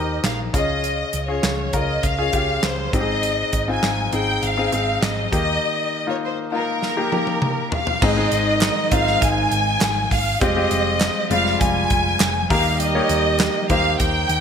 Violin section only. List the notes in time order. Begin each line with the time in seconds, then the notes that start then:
Already playing: D#5
0.25 F5
0.55 D#5
1.30 C#5
1.75 D#5
2.05 F5
2.65 C5
2.95 D#5
3.70 G#5
4.15 G5
4.45 F5
5.04 D#5
5.34 D#5
6.10 C#5
6.25 C5
6.54 A#4
7.74 F5
8.04 D#5
8.94 F5
9.24 G#5
10.13 F5
10.43 D#5
11.32 F5
11.62 G#5
12.52 F5
12.81 D#5
13.71 F5
14.00 G5